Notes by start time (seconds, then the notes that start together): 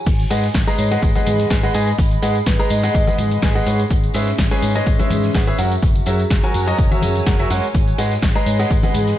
Already playing: F#4 C#5 G#5
0.06 G#1 G#4, kick, closed hi-hat, crash, tambourine
0.19 D#5, closed hi-hat, tambourine
0.30 G#2 G#3 G#4 B4 D#5 F#5, snare, closed hi-hat, open hi-hat, tambourine
0.43 snare, closed hi-hat, tambourine
0.54 G#1 B5, kick, snare, closed hi-hat, tambourine
0.67 G#3 G#4 B4 D#5 A#5, snare, closed hi-hat, tambourine
0.78 G#2 C#5, closed hi-hat, open hi-hat, tambourine
0.91 G#3 G#4 B4 D#5 F#5, snare, closed hi-hat, tambourine
1.02 G#1, kick, closed hi-hat, tambourine
1.15 G#3 G#4 B4 D#5 F#5, closed hi-hat, tambourine, high conga
1.26 G#2 G#4, closed hi-hat, open hi-hat, tambourine, high conga
1.39 G#4, snare, closed hi-hat, tambourine
1.50 G#1 G#3 G#4 B4 D#5 G#5, kick, snare, closed hi-hat, tambourine
1.63 G#3 G#4 B4 D#5 F#5, closed hi-hat, tambourine
1.74 G#2 G#3 G#4 B4 D#5 G#5, closed hi-hat, open hi-hat, tambourine
1.87 closed hi-hat, tambourine
1.98 G#1, kick, closed hi-hat, open hi-hat, tambourine
2.11 closed hi-hat, tambourine
2.22 G#2 G#3 G#4 B4 D#5 F#5, closed hi-hat, open hi-hat, tambourine
2.35 closed hi-hat, tambourine
2.46 G#1 B4, kick, snare, closed hi-hat, tambourine
2.59 G#3 G#4 B4 D#5 A#5, snare, closed hi-hat, tambourine
2.70 G#2 D#5, closed hi-hat, open hi-hat, tambourine
2.83 G#3 G#4 B4 D#5 F#5, snare, closed hi-hat, tambourine
2.94 G#1, kick, closed hi-hat, tambourine
3.07 G#3 G#4 B4 D#5 F#5, closed hi-hat, tambourine, high conga
3.18 G#2, closed hi-hat, open hi-hat, tambourine, high conga
3.31 closed hi-hat, tambourine
3.42 G#1 G#3 G#4 B4 D#5 G#5, kick, snare, closed hi-hat, tambourine
3.55 G#3 G#4 B4 D#5 F#5, closed hi-hat, tambourine
3.66 G#2 G#3 C#4 G#4 B4 C#5 F#5, closed hi-hat, open hi-hat, tambourine
3.79 closed hi-hat, tambourine
3.90 G#1, kick, closed hi-hat, tambourine
3.98 E5
4.03 closed hi-hat, tambourine
4.14 G#2 G#3 G#4 B4 C#5 E5, snare, closed hi-hat, open hi-hat, tambourine
4.27 snare, closed hi-hat, tambourine
4.38 G#1, kick, snare, closed hi-hat, tambourine
4.51 G#3 G#4 B4 C#5 G#5, snare, closed hi-hat, tambourine
4.62 G#2 C#5, closed hi-hat, open hi-hat, tambourine
4.75 G#3 G#4 B4 C#5 D#5, snare, closed hi-hat, tambourine
4.86 G#1, kick, closed hi-hat, tambourine
4.99 G#3 G#4 B4 C#5 E5, closed hi-hat, tambourine, high conga
5.10 G#2 G#4, closed hi-hat, open hi-hat, tambourine, high conga
5.23 G#4, snare, closed hi-hat, tambourine
5.34 G#1 G#4 B4 C#5 F#5, kick, snare, closed hi-hat, tambourine
5.47 G#4 B4 C#5 E5, closed hi-hat, tambourine
5.58 F#2 F#3 F#4 A#4 C#5 F#5, closed hi-hat, open hi-hat, tambourine
5.71 C#5, closed hi-hat, tambourine
5.82 F#1, kick, closed hi-hat, open hi-hat, tambourine
5.88 A#5
5.95 G#5, closed hi-hat, tambourine
6.06 F#2 F#3 F#4 G#4 A#4 C#5 E5, closed hi-hat, open hi-hat, tambourine
6.19 closed hi-hat, tambourine
6.30 F#1, kick, snare, closed hi-hat, tambourine
6.43 F#3 F#4 A#4 C#5 G#5, snare, closed hi-hat, tambourine
6.54 F#2 F#4, closed hi-hat, open hi-hat, tambourine
6.67 F#3 F#4 A#4 C#5 D#5, snare, closed hi-hat, tambourine
6.78 F#1, kick, closed hi-hat, tambourine
6.91 F#3 F#4 A#4 C#5 E5, closed hi-hat, tambourine, high conga
7.02 F#2 G#4, closed hi-hat, open hi-hat, tambourine, high conga
7.15 closed hi-hat, tambourine
7.26 F#1 F#3 F#4 A#4 C#5 F#5, kick, snare, closed hi-hat, tambourine
7.39 F#3 F#4 A#4 C#5 E5, closed hi-hat, tambourine
7.50 F#2 G#3 F#4 A#4 C#5 F#5, closed hi-hat, open hi-hat, tambourine
7.63 closed hi-hat, tambourine
7.74 G#1 G#4, kick, closed hi-hat, tambourine
7.87 closed hi-hat, tambourine
7.93 D#5
7.98 G#2 G#3 G#4 B4 D#5 F#5, snare, closed hi-hat, open hi-hat, tambourine
8.11 snare, closed hi-hat, tambourine
8.21 G#1 B5, kick, snare, closed hi-hat, tambourine
8.35 G#3 G#4 B4 D#5 A#5, snare, closed hi-hat, tambourine
8.46 G#2 C#5, closed hi-hat, open hi-hat, tambourine
8.59 G#3 G#4 B4 D#5 F#5, snare, closed hi-hat, tambourine
8.70 G#1, kick, closed hi-hat, tambourine
8.83 G#3 G#4 B4 D#5 F#5, closed hi-hat, tambourine, high conga
8.94 G#2 G#4, closed hi-hat, open hi-hat, tambourine, high conga
9.07 G#4, snare, closed hi-hat, tambourine